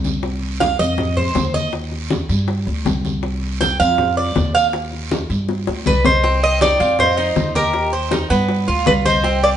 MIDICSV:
0, 0, Header, 1, 6, 480
1, 0, Start_track
1, 0, Key_signature, -3, "minor"
1, 0, Tempo, 375469
1, 291, Time_signature, 4, 2, 24, 8
1, 12233, End_track
2, 0, Start_track
2, 0, Title_t, "Flute"
2, 0, Program_c, 0, 73
2, 7499, Note_on_c, 0, 74, 77
2, 7720, Note_off_c, 0, 74, 0
2, 7748, Note_on_c, 0, 75, 80
2, 8188, Note_off_c, 0, 75, 0
2, 8232, Note_on_c, 0, 79, 75
2, 8446, Note_off_c, 0, 79, 0
2, 8472, Note_on_c, 0, 79, 87
2, 8910, Note_off_c, 0, 79, 0
2, 8948, Note_on_c, 0, 75, 74
2, 9611, Note_off_c, 0, 75, 0
2, 9664, Note_on_c, 0, 75, 63
2, 10106, Note_off_c, 0, 75, 0
2, 11334, Note_on_c, 0, 74, 84
2, 11410, Note_off_c, 0, 74, 0
2, 11574, Note_on_c, 0, 75, 89
2, 12021, Note_off_c, 0, 75, 0
2, 12066, Note_on_c, 0, 77, 70
2, 12143, Note_off_c, 0, 77, 0
2, 12233, End_track
3, 0, Start_track
3, 0, Title_t, "Cuban tres"
3, 0, Program_c, 1, 25
3, 772, Note_on_c, 1, 77, 90
3, 1005, Note_off_c, 1, 77, 0
3, 1014, Note_on_c, 1, 75, 90
3, 1460, Note_off_c, 1, 75, 0
3, 1493, Note_on_c, 1, 72, 66
3, 1939, Note_off_c, 1, 72, 0
3, 1972, Note_on_c, 1, 75, 92
3, 2205, Note_off_c, 1, 75, 0
3, 4611, Note_on_c, 1, 79, 99
3, 4845, Note_off_c, 1, 79, 0
3, 4855, Note_on_c, 1, 77, 98
3, 5301, Note_off_c, 1, 77, 0
3, 5334, Note_on_c, 1, 74, 68
3, 5780, Note_off_c, 1, 74, 0
3, 5812, Note_on_c, 1, 77, 93
3, 5957, Note_off_c, 1, 77, 0
3, 7972, Note_on_c, 1, 60, 73
3, 8438, Note_off_c, 1, 60, 0
3, 8453, Note_on_c, 1, 63, 69
3, 8686, Note_off_c, 1, 63, 0
3, 8695, Note_on_c, 1, 65, 75
3, 9160, Note_off_c, 1, 65, 0
3, 9172, Note_on_c, 1, 63, 78
3, 9638, Note_off_c, 1, 63, 0
3, 9656, Note_on_c, 1, 67, 78
3, 10121, Note_off_c, 1, 67, 0
3, 10135, Note_on_c, 1, 72, 76
3, 10367, Note_off_c, 1, 72, 0
3, 10371, Note_on_c, 1, 63, 69
3, 10605, Note_off_c, 1, 63, 0
3, 10612, Note_on_c, 1, 59, 87
3, 11078, Note_off_c, 1, 59, 0
3, 11094, Note_on_c, 1, 65, 82
3, 11560, Note_off_c, 1, 65, 0
3, 11575, Note_on_c, 1, 72, 81
3, 11807, Note_off_c, 1, 72, 0
3, 11815, Note_on_c, 1, 60, 86
3, 12233, Note_off_c, 1, 60, 0
3, 12233, End_track
4, 0, Start_track
4, 0, Title_t, "Cuban tres"
4, 0, Program_c, 2, 25
4, 7502, Note_on_c, 2, 71, 78
4, 7735, Note_off_c, 2, 71, 0
4, 7740, Note_on_c, 2, 72, 89
4, 8183, Note_off_c, 2, 72, 0
4, 8227, Note_on_c, 2, 75, 90
4, 8444, Note_off_c, 2, 75, 0
4, 8463, Note_on_c, 2, 74, 91
4, 8905, Note_off_c, 2, 74, 0
4, 8946, Note_on_c, 2, 72, 83
4, 9658, Note_off_c, 2, 72, 0
4, 9663, Note_on_c, 2, 70, 78
4, 10105, Note_off_c, 2, 70, 0
4, 11337, Note_on_c, 2, 71, 90
4, 11402, Note_off_c, 2, 71, 0
4, 11578, Note_on_c, 2, 72, 92
4, 12023, Note_off_c, 2, 72, 0
4, 12062, Note_on_c, 2, 74, 91
4, 12126, Note_off_c, 2, 74, 0
4, 12233, End_track
5, 0, Start_track
5, 0, Title_t, "Upright bass"
5, 0, Program_c, 3, 32
5, 0, Note_on_c, 3, 36, 86
5, 937, Note_off_c, 3, 36, 0
5, 1013, Note_on_c, 3, 41, 91
5, 1683, Note_off_c, 3, 41, 0
5, 1730, Note_on_c, 3, 39, 93
5, 2857, Note_off_c, 3, 39, 0
5, 2929, Note_on_c, 3, 43, 96
5, 3377, Note_off_c, 3, 43, 0
5, 3409, Note_on_c, 3, 38, 80
5, 3634, Note_off_c, 3, 38, 0
5, 3645, Note_on_c, 3, 36, 86
5, 4774, Note_off_c, 3, 36, 0
5, 4855, Note_on_c, 3, 41, 101
5, 5524, Note_off_c, 3, 41, 0
5, 5574, Note_on_c, 3, 39, 90
5, 6699, Note_off_c, 3, 39, 0
5, 6771, Note_on_c, 3, 43, 93
5, 7219, Note_off_c, 3, 43, 0
5, 7257, Note_on_c, 3, 38, 74
5, 7479, Note_off_c, 3, 38, 0
5, 7493, Note_on_c, 3, 36, 91
5, 8618, Note_off_c, 3, 36, 0
5, 8690, Note_on_c, 3, 41, 90
5, 9361, Note_off_c, 3, 41, 0
5, 9412, Note_on_c, 3, 39, 89
5, 10538, Note_off_c, 3, 39, 0
5, 10613, Note_on_c, 3, 43, 102
5, 11060, Note_off_c, 3, 43, 0
5, 11098, Note_on_c, 3, 38, 74
5, 11319, Note_off_c, 3, 38, 0
5, 11336, Note_on_c, 3, 36, 90
5, 12233, Note_off_c, 3, 36, 0
5, 12233, End_track
6, 0, Start_track
6, 0, Title_t, "Drums"
6, 50, Note_on_c, 9, 60, 34
6, 57, Note_on_c, 9, 73, 67
6, 63, Note_on_c, 9, 63, 78
6, 178, Note_off_c, 9, 60, 0
6, 185, Note_off_c, 9, 73, 0
6, 191, Note_off_c, 9, 63, 0
6, 293, Note_on_c, 9, 60, 70
6, 295, Note_on_c, 9, 74, 68
6, 302, Note_on_c, 9, 63, 31
6, 421, Note_off_c, 9, 60, 0
6, 423, Note_off_c, 9, 74, 0
6, 430, Note_off_c, 9, 63, 0
6, 542, Note_on_c, 9, 63, 32
6, 670, Note_off_c, 9, 63, 0
6, 772, Note_on_c, 9, 60, 57
6, 778, Note_on_c, 9, 73, 70
6, 780, Note_on_c, 9, 63, 97
6, 900, Note_off_c, 9, 60, 0
6, 905, Note_off_c, 9, 73, 0
6, 908, Note_off_c, 9, 63, 0
6, 1013, Note_on_c, 9, 73, 69
6, 1017, Note_on_c, 9, 63, 33
6, 1141, Note_off_c, 9, 73, 0
6, 1145, Note_off_c, 9, 63, 0
6, 1252, Note_on_c, 9, 60, 74
6, 1254, Note_on_c, 9, 63, 34
6, 1254, Note_on_c, 9, 64, 80
6, 1254, Note_on_c, 9, 74, 69
6, 1380, Note_off_c, 9, 60, 0
6, 1382, Note_off_c, 9, 63, 0
6, 1382, Note_off_c, 9, 64, 0
6, 1382, Note_off_c, 9, 74, 0
6, 1497, Note_on_c, 9, 63, 31
6, 1497, Note_on_c, 9, 64, 75
6, 1624, Note_off_c, 9, 63, 0
6, 1624, Note_off_c, 9, 64, 0
6, 1728, Note_on_c, 9, 60, 66
6, 1728, Note_on_c, 9, 61, 80
6, 1732, Note_on_c, 9, 73, 74
6, 1735, Note_on_c, 9, 63, 82
6, 1856, Note_off_c, 9, 60, 0
6, 1856, Note_off_c, 9, 61, 0
6, 1860, Note_off_c, 9, 73, 0
6, 1863, Note_off_c, 9, 63, 0
6, 1971, Note_on_c, 9, 63, 71
6, 1974, Note_on_c, 9, 73, 62
6, 2099, Note_off_c, 9, 63, 0
6, 2102, Note_off_c, 9, 73, 0
6, 2209, Note_on_c, 9, 60, 67
6, 2213, Note_on_c, 9, 63, 33
6, 2215, Note_on_c, 9, 74, 65
6, 2337, Note_off_c, 9, 60, 0
6, 2340, Note_off_c, 9, 63, 0
6, 2343, Note_off_c, 9, 74, 0
6, 2451, Note_on_c, 9, 60, 35
6, 2454, Note_on_c, 9, 63, 33
6, 2579, Note_off_c, 9, 60, 0
6, 2582, Note_off_c, 9, 63, 0
6, 2690, Note_on_c, 9, 60, 60
6, 2691, Note_on_c, 9, 63, 104
6, 2694, Note_on_c, 9, 73, 65
6, 2817, Note_off_c, 9, 60, 0
6, 2818, Note_off_c, 9, 63, 0
6, 2822, Note_off_c, 9, 73, 0
6, 2931, Note_on_c, 9, 63, 31
6, 2935, Note_on_c, 9, 73, 71
6, 3059, Note_off_c, 9, 63, 0
6, 3063, Note_off_c, 9, 73, 0
6, 3168, Note_on_c, 9, 60, 67
6, 3175, Note_on_c, 9, 74, 68
6, 3176, Note_on_c, 9, 63, 33
6, 3296, Note_off_c, 9, 60, 0
6, 3303, Note_off_c, 9, 74, 0
6, 3304, Note_off_c, 9, 63, 0
6, 3412, Note_on_c, 9, 60, 36
6, 3414, Note_on_c, 9, 63, 35
6, 3540, Note_off_c, 9, 60, 0
6, 3542, Note_off_c, 9, 63, 0
6, 3652, Note_on_c, 9, 63, 77
6, 3656, Note_on_c, 9, 60, 73
6, 3656, Note_on_c, 9, 61, 83
6, 3656, Note_on_c, 9, 73, 73
6, 3780, Note_off_c, 9, 63, 0
6, 3784, Note_off_c, 9, 60, 0
6, 3784, Note_off_c, 9, 61, 0
6, 3784, Note_off_c, 9, 73, 0
6, 3893, Note_on_c, 9, 60, 34
6, 3896, Note_on_c, 9, 63, 80
6, 3896, Note_on_c, 9, 73, 67
6, 4021, Note_off_c, 9, 60, 0
6, 4024, Note_off_c, 9, 63, 0
6, 4024, Note_off_c, 9, 73, 0
6, 4128, Note_on_c, 9, 60, 68
6, 4136, Note_on_c, 9, 74, 66
6, 4139, Note_on_c, 9, 63, 32
6, 4256, Note_off_c, 9, 60, 0
6, 4264, Note_off_c, 9, 74, 0
6, 4267, Note_off_c, 9, 63, 0
6, 4377, Note_on_c, 9, 63, 34
6, 4505, Note_off_c, 9, 63, 0
6, 4610, Note_on_c, 9, 60, 61
6, 4617, Note_on_c, 9, 73, 72
6, 4624, Note_on_c, 9, 63, 97
6, 4738, Note_off_c, 9, 60, 0
6, 4745, Note_off_c, 9, 73, 0
6, 4752, Note_off_c, 9, 63, 0
6, 4854, Note_on_c, 9, 73, 79
6, 4859, Note_on_c, 9, 63, 33
6, 4982, Note_off_c, 9, 73, 0
6, 4987, Note_off_c, 9, 63, 0
6, 5090, Note_on_c, 9, 60, 71
6, 5096, Note_on_c, 9, 74, 65
6, 5099, Note_on_c, 9, 63, 35
6, 5099, Note_on_c, 9, 64, 81
6, 5218, Note_off_c, 9, 60, 0
6, 5224, Note_off_c, 9, 74, 0
6, 5227, Note_off_c, 9, 63, 0
6, 5227, Note_off_c, 9, 64, 0
6, 5335, Note_on_c, 9, 63, 33
6, 5463, Note_off_c, 9, 63, 0
6, 5569, Note_on_c, 9, 60, 69
6, 5569, Note_on_c, 9, 61, 82
6, 5572, Note_on_c, 9, 63, 83
6, 5575, Note_on_c, 9, 73, 67
6, 5697, Note_off_c, 9, 60, 0
6, 5697, Note_off_c, 9, 61, 0
6, 5700, Note_off_c, 9, 63, 0
6, 5703, Note_off_c, 9, 73, 0
6, 5817, Note_on_c, 9, 73, 69
6, 5945, Note_off_c, 9, 73, 0
6, 6050, Note_on_c, 9, 60, 72
6, 6057, Note_on_c, 9, 63, 32
6, 6060, Note_on_c, 9, 74, 67
6, 6178, Note_off_c, 9, 60, 0
6, 6185, Note_off_c, 9, 63, 0
6, 6188, Note_off_c, 9, 74, 0
6, 6300, Note_on_c, 9, 60, 35
6, 6302, Note_on_c, 9, 63, 33
6, 6428, Note_off_c, 9, 60, 0
6, 6430, Note_off_c, 9, 63, 0
6, 6538, Note_on_c, 9, 63, 100
6, 6538, Note_on_c, 9, 73, 70
6, 6541, Note_on_c, 9, 60, 58
6, 6665, Note_off_c, 9, 73, 0
6, 6666, Note_off_c, 9, 63, 0
6, 6669, Note_off_c, 9, 60, 0
6, 6775, Note_on_c, 9, 73, 71
6, 6779, Note_on_c, 9, 63, 32
6, 6903, Note_off_c, 9, 73, 0
6, 6907, Note_off_c, 9, 63, 0
6, 7013, Note_on_c, 9, 60, 82
6, 7013, Note_on_c, 9, 74, 66
6, 7018, Note_on_c, 9, 63, 33
6, 7141, Note_off_c, 9, 60, 0
6, 7141, Note_off_c, 9, 74, 0
6, 7146, Note_off_c, 9, 63, 0
6, 7253, Note_on_c, 9, 60, 82
6, 7259, Note_on_c, 9, 63, 37
6, 7381, Note_off_c, 9, 60, 0
6, 7387, Note_off_c, 9, 63, 0
6, 7488, Note_on_c, 9, 61, 76
6, 7493, Note_on_c, 9, 73, 72
6, 7500, Note_on_c, 9, 63, 77
6, 7616, Note_off_c, 9, 61, 0
6, 7621, Note_off_c, 9, 73, 0
6, 7628, Note_off_c, 9, 63, 0
6, 7729, Note_on_c, 9, 61, 87
6, 7730, Note_on_c, 9, 73, 66
6, 7739, Note_on_c, 9, 63, 80
6, 7857, Note_off_c, 9, 61, 0
6, 7858, Note_off_c, 9, 73, 0
6, 7867, Note_off_c, 9, 63, 0
6, 7974, Note_on_c, 9, 74, 67
6, 7976, Note_on_c, 9, 60, 74
6, 7976, Note_on_c, 9, 63, 31
6, 8102, Note_off_c, 9, 74, 0
6, 8104, Note_off_c, 9, 60, 0
6, 8104, Note_off_c, 9, 63, 0
6, 8217, Note_on_c, 9, 63, 31
6, 8345, Note_off_c, 9, 63, 0
6, 8452, Note_on_c, 9, 60, 58
6, 8452, Note_on_c, 9, 63, 94
6, 8456, Note_on_c, 9, 73, 71
6, 8580, Note_off_c, 9, 60, 0
6, 8580, Note_off_c, 9, 63, 0
6, 8584, Note_off_c, 9, 73, 0
6, 8694, Note_on_c, 9, 63, 33
6, 8695, Note_on_c, 9, 73, 75
6, 8822, Note_off_c, 9, 63, 0
6, 8823, Note_off_c, 9, 73, 0
6, 8934, Note_on_c, 9, 60, 68
6, 8934, Note_on_c, 9, 63, 32
6, 8934, Note_on_c, 9, 64, 79
6, 8935, Note_on_c, 9, 74, 70
6, 9062, Note_off_c, 9, 60, 0
6, 9062, Note_off_c, 9, 63, 0
6, 9062, Note_off_c, 9, 64, 0
6, 9063, Note_off_c, 9, 74, 0
6, 9178, Note_on_c, 9, 63, 34
6, 9305, Note_off_c, 9, 63, 0
6, 9411, Note_on_c, 9, 60, 66
6, 9411, Note_on_c, 9, 61, 83
6, 9415, Note_on_c, 9, 63, 81
6, 9417, Note_on_c, 9, 73, 66
6, 9539, Note_off_c, 9, 60, 0
6, 9539, Note_off_c, 9, 61, 0
6, 9543, Note_off_c, 9, 63, 0
6, 9545, Note_off_c, 9, 73, 0
6, 9656, Note_on_c, 9, 73, 70
6, 9657, Note_on_c, 9, 63, 69
6, 9784, Note_off_c, 9, 73, 0
6, 9785, Note_off_c, 9, 63, 0
6, 9889, Note_on_c, 9, 60, 69
6, 9896, Note_on_c, 9, 74, 66
6, 9901, Note_on_c, 9, 63, 32
6, 10017, Note_off_c, 9, 60, 0
6, 10023, Note_off_c, 9, 74, 0
6, 10029, Note_off_c, 9, 63, 0
6, 10132, Note_on_c, 9, 60, 31
6, 10133, Note_on_c, 9, 63, 33
6, 10260, Note_off_c, 9, 60, 0
6, 10261, Note_off_c, 9, 63, 0
6, 10368, Note_on_c, 9, 60, 64
6, 10375, Note_on_c, 9, 73, 68
6, 10376, Note_on_c, 9, 63, 108
6, 10495, Note_off_c, 9, 60, 0
6, 10503, Note_off_c, 9, 63, 0
6, 10503, Note_off_c, 9, 73, 0
6, 10617, Note_on_c, 9, 73, 76
6, 10619, Note_on_c, 9, 63, 30
6, 10745, Note_off_c, 9, 73, 0
6, 10747, Note_off_c, 9, 63, 0
6, 10848, Note_on_c, 9, 60, 71
6, 10853, Note_on_c, 9, 63, 33
6, 10856, Note_on_c, 9, 74, 69
6, 10976, Note_off_c, 9, 60, 0
6, 10980, Note_off_c, 9, 63, 0
6, 10984, Note_off_c, 9, 74, 0
6, 11091, Note_on_c, 9, 60, 36
6, 11093, Note_on_c, 9, 63, 36
6, 11219, Note_off_c, 9, 60, 0
6, 11221, Note_off_c, 9, 63, 0
6, 11329, Note_on_c, 9, 60, 70
6, 11329, Note_on_c, 9, 61, 83
6, 11331, Note_on_c, 9, 63, 81
6, 11340, Note_on_c, 9, 73, 73
6, 11457, Note_off_c, 9, 60, 0
6, 11457, Note_off_c, 9, 61, 0
6, 11459, Note_off_c, 9, 63, 0
6, 11467, Note_off_c, 9, 73, 0
6, 11574, Note_on_c, 9, 60, 33
6, 11574, Note_on_c, 9, 63, 82
6, 11578, Note_on_c, 9, 73, 68
6, 11702, Note_off_c, 9, 60, 0
6, 11702, Note_off_c, 9, 63, 0
6, 11705, Note_off_c, 9, 73, 0
6, 11808, Note_on_c, 9, 60, 70
6, 11816, Note_on_c, 9, 63, 33
6, 11821, Note_on_c, 9, 74, 67
6, 11936, Note_off_c, 9, 60, 0
6, 11944, Note_off_c, 9, 63, 0
6, 11949, Note_off_c, 9, 74, 0
6, 12055, Note_on_c, 9, 63, 32
6, 12183, Note_off_c, 9, 63, 0
6, 12233, End_track
0, 0, End_of_file